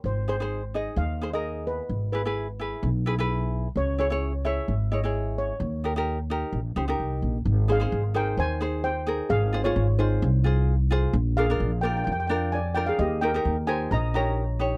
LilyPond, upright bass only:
\new Staff \with { instrumentName = "Upright bass" } { \clef bass \time 4/4 \key aes \major \tempo 4 = 130 aes,,2 ees,2 | gis,,2 b,,2 | des,2 aes,,2 | ees,2 bes,,8 des,8 c,8 bes,,8 |
aes,,4 aes,,4 ees,2 | aes,,4 aes,,4 c,2 | bes,,4 bes,,4 f,2 | ees,4 ees,4 bes,,2 | }